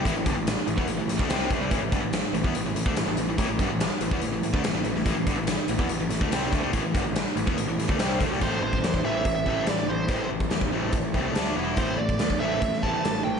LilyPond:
<<
  \new Staff \with { instrumentName = "Lead electric guitar" } { \time 4/4 \key a \minor \tempo 4 = 144 r1 | r1 | r1 | r1 |
r1 | c''8 c''4 e''8. e''8. d''8 c''8~ | c''8 r2. r8 | c''8 d''4 e''4 a''4 g''8 | }
  \new Staff \with { instrumentName = "Overdriven electric guitar" } { \clef bass \time 4/4 \key a \minor <a, e>16 <a, e>16 <g, d>16 <a, e>8 r16 <a, e>16 <e b>16 <a, e>16 <a, e>16 <a, e>16 <d a>16 <c g c'>8 <d a>16 <c g>16 | <a, e>16 <a, e>16 <g, d>16 <a, e>8 r16 <a, e>16 <e b>16 <a, e>16 <a, e>16 <a, e>16 <d a>16 <a, e>16 <a, e>16 <a, e>16 <a, e>16 | <a, e>16 <a, e>16 <g, d>16 <a, e>8 r16 <a, e>16 <e b>16 <a, e>16 <a, e>16 <a, e>16 <d a>16 <a, e>16 <a, e>16 <a, e>16 <a, e>16 | <a, e>16 <a, e>16 <g, d>16 <a, e>8 r16 <a, e>16 <e b>16 <a, e>16 <a, e>16 <a, e>16 <d a>16 <c g c'>8 <d a>16 <c g>16 |
<a, e>16 <a, e>16 <g, d>16 <a, e>8 r16 <a, e>16 <e b>16 <a, e>16 <a, e>16 <a, e>16 <d a>16 <c g c'>8 <d a>16 <c g>16 | <a, e a>8 <a, e>8 <a, e>8 <a, e a>8 <a, e>8 <a, e a>8 <a, e>8 <a, e>8 | <a, e a>8 <a, e>8 <a, e>8 <a, e a>8 <a, e>8 <a, e a>8 <d a d'>8 <e b e'>8 | <a, e a>8 <a, e>8 <a, e>8 <a, e a>8 <a, e>8 <a, e a>8 <a, e>8 <a, e>8 | }
  \new Staff \with { instrumentName = "Overdriven electric guitar" } { \clef bass \time 4/4 \key a \minor <a, e>16 <a, e>16 <g, d>16 <a, e>8 r16 <a, e>16 <e b>16 <a, e>16 <a, e>16 <a, e>16 <d a>16 <c g c'>8 <d a>16 <c g>16 | <a, e>16 <a, e>16 <g, d>16 <a, e>8 r16 <a, e>16 <e b>16 <a, e>16 <a, e>16 <a, e>16 <d a>16 <a, e>16 <a, e>16 <a, e>16 <a, e>16 | <a, e>16 <a, e>16 <g, d>16 <a, e>8 r16 <a, e>16 <e b>16 <a, e>16 <a, e>16 <a, e>16 <d a>16 <a, e>16 <a, e>16 <a, e>16 <a, e>16 | <a, e>16 <a, e>16 <g, d>16 <a, e>8 r16 <a, e>16 <e b>16 <a, e>16 <a, e>16 <a, e>16 <d a>16 <c g c'>8 <d a>16 <c g>16 |
<a, e>16 <a, e>16 <g, d>16 <a, e>8 r16 <a, e>16 <e b>16 <a, e>16 <a, e>16 <a, e>16 <d a>16 <c g c'>8 <d a>16 <c g>16 | <a, e c'>8 <a, e>8 <a, e>8 <a, e c'>8 <a, e>8 <a, e c'>8 <a, e>8 <a, e>8 | <a, e c'>8 <a, e>8 <a, e>8 <a, e c'>8 <a, e>8 <a, e c'>8 <d a d'>8 <e b e'>8 | <a, a c'>8 <a, a>8 <a, a>8 <a, a c'>8 <a, a>8 <a, a c'>8 <a, a>8 <a, a>8 | }
  \new Staff \with { instrumentName = "Picked electric bass" } { \clef bass \time 4/4 \key a \minor a,,16 a,,16 g,,16 a,,8 r16 a,,16 e,16 a,,16 a,,16 a,,16 d,16 c,8 d,16 c,16 | a,,16 a,,16 g,,16 a,,8 r16 a,,16 e,16 a,,16 a,,16 a,,16 d,16 a,,16 a,,16 a,,16 a,,16 | a,,16 a,,16 g,,16 a,,8 r16 a,,16 e,16 a,,16 a,,16 a,,16 d,16 a,,16 a,,16 a,,16 a,,16 | a,,16 a,,16 g,,16 a,,8 r16 a,,16 e,16 a,,16 a,,16 a,,16 d,16 c,8 d,16 c,16 |
a,,16 a,,16 g,,16 a,,8 r16 a,,16 e,16 a,,16 a,,16 a,,16 d,16 c,8 d,16 c,16 | a,,8 a,,8 e,8 a,,8 a,,8 a,,8 a,,8 a,,8 | a,,8 a,,8 e,8 a,,8 a,,8 c,8 d,8 e,,8 | a,,8 a,,8 e,8 a,,8 a,,8 a,,8 a,,8 a,,8 | }
  \new DrumStaff \with { instrumentName = "Drums" } \drummode { \time 4/4 <hh bd>8 <hh bd>8 <hh sn>8 hh16 bd16 hh8 <hh sn>16 <bd sn>16 <hh sn>8 <hh bd>8 | <hh bd>8 <hh bd>8 <hh sn>8 hh16 bd16 hh8 hh16 bd16 <hh sn>8 hh8 | <hh bd>8 <hh bd>8 <hh sn>8 hh16 bd16 hh8 hh16 bd16 <hh sn>8 hh16 sn16 | <hh bd>8 <hh bd>8 <hh sn>8 hh16 bd16 hh8 <hh sn>16 bd16 <hh sn>8 <hh bd>8 |
<hh bd>8 <hh bd>8 <hh sn>8 hh16 bd16 hh8 <hh sn>16 bd16 <hh sn>8 <hh bd>16 sn16 | <cymc bd>8. bd16 <hh sn>16 <bd sn>8. <hh bd>8 bd8 <hh sn>4 | <hh bd>8. bd16 <hh sn>16 bd8. <hh bd>8 bd8 <hh sn>4 | <hh bd>8. bd16 <hh sn>16 <bd sn>8. <hh bd>16 sn16 bd8 <hh sn>8. sn16 | }
>>